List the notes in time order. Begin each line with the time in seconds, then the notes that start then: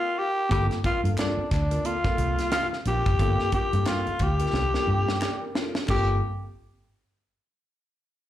Already playing: F4 A#4
0.16 F4 G4 A4
0.49 G1 A#3 C4 F4 G4 A4, kick, closed hi-hat
0.71 snare, closed hi-hat
0.84 C4 F4 A#4, muted fingered electric bass stroke, kick, closed hi-hat
1.03 G2 A#3 C4 F4 A4, closed hi-hat
1.18 C4 D4 F4 A#4, snare, clap, closed hi-hat
1.37 muted fingered electric bass stroke
1.51 D2 D4, muted clean electric guitar stroke, kick, snare, clap, closed hi-hat
1.71 C4 F4 A#4, closed hi-hat
1.84 A#3 C4 F4 A4, muted clean electric guitar stroke, closed hi-hat
2.04 A#3 C4 F4 A4 A#4, muted fingered electric bass stroke, kick, snare, closed hi-hat
2.18 C2, closed hi-hat
2.38 muted clean electric guitar stroke, snare, closed hi-hat
2.51 F4, snare, clap, closed hi-hat
2.73 muted clean electric guitar stroke, snare
2.85 A#1 C4 F4 G4 A#4, closed hi-hat
3.06 F#1, muted clean electric guitar stroke, kick, closed hi-hat
3.19 G1 A#3 C4 F4 A4, kick, closed hi-hat
3.39 snare
3.52 C4 F4 G4 A#4, muted fingered electric bass stroke, kick, closed hi-hat
3.72 G2 A#3 C4 F4 A4, closed hi-hat
3.85 C4 F4 A#4, snare, clap, closed hi-hat
4.06 muted fingered electric bass stroke, closed hi-hat
4.19 D2 G4, muted clean electric guitar stroke, kick, closed hi-hat
4.39 C4 F4 A#4, closed hi-hat
4.53 C2 A#3 C4 F4 A4, snare
4.73 A#3 C4 F4 A4 A#4, snare
4.87 G2
5.08 muted clean electric guitar stroke, snare
5.22 D5, snare, clap
5.41 A#4, muted clean electric guitar stroke
5.55 C4 F4 A4 A#4, snare
5.75 muted clean electric guitar stroke, snare
5.88 G1 A#3 C4 F4 G4 A4 A#4, kick, clap, crash